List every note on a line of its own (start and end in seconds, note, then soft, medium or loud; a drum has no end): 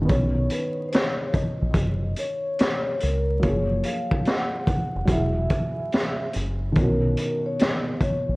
0.00 3.35 D#3 medium
0.00 0.11 F#3 medium
0.00 0.12 D#4 medium
0.00 0.11 E4 medium
0.00 0.12 G#4 medium
0.05 3.37 B3 medium
0.05 3.38 C#4 medium
0.09 0.48 B1 loud
0.09 3.40 C#5 medium
0.09 kick loud
0.09 closed hi-hat medium
0.50 0.90 B4 medium
0.50 closed hi-hat medium
0.88 0.93 C5 medium
0.93 1.36 C#5 medium
0.93 snare loud
0.93 closed hi-hat medium
1.34 2.14 D#5 medium
1.34 kick loud
1.34 closed hi-hat medium
1.62 1.75 A#1 medium
1.74 2.13 F#1 loud
1.74 kick loud
1.74 closed hi-hat medium
2.16 3.04 C#5 medium
2.16 closed hi-hat medium
2.59 snare loud
2.59 closed hi-hat medium
3.00 3.40 C#2 medium
3.00 3.45 A#4 medium
3.00 closed hi-hat medium
3.39 5.04 F#3 medium
3.39 5.06 A#3 medium
3.39 kick loud
3.39 closed hi-hat medium
3.44 3.81 F#1 loud
3.44 5.07 F3 soft
3.44 3.86 C#5 medium
3.48 5.09 G#4 medium
3.83 4.28 F5 loud
3.83 closed hi-hat medium
4.11 kick medium
4.25 5.04 F#5 loud
4.25 snare loud
4.25 closed hi-hat medium
4.67 kick medium
4.67 closed hi-hat medium
4.96 5.08 F1 medium
5.05 5.47 E1 loud
5.05 6.71 F#3 medium
5.05 6.72 F#4 medium
5.05 5.10 F#5 medium
5.05 kick medium
5.05 closed hi-hat medium
5.11 6.74 E4 medium
5.11 6.76 G#4 medium
5.11 6.32 E5 medium
5.50 kick medium
5.50 closed hi-hat medium
5.92 snare loud
5.92 closed hi-hat medium
6.33 6.73 F#1 medium
6.33 closed hi-hat medium
6.72 8.36 B2 medium
6.72 8.36 D#3 medium
6.72 closed hi-hat medium
6.76 7.15 B1 loud
6.76 8.36 C#4 medium
6.76 7.41 A#4 medium
6.76 kick loud
6.82 8.36 F#4 medium
7.17 closed hi-hat medium
7.46 7.53 C#5 medium
7.59 8.04 D#5 loud
7.59 snare loud
7.59 closed hi-hat medium
8.01 8.36 C#5 loud
8.01 kick medium
8.01 closed hi-hat medium
8.29 8.36 A#1 medium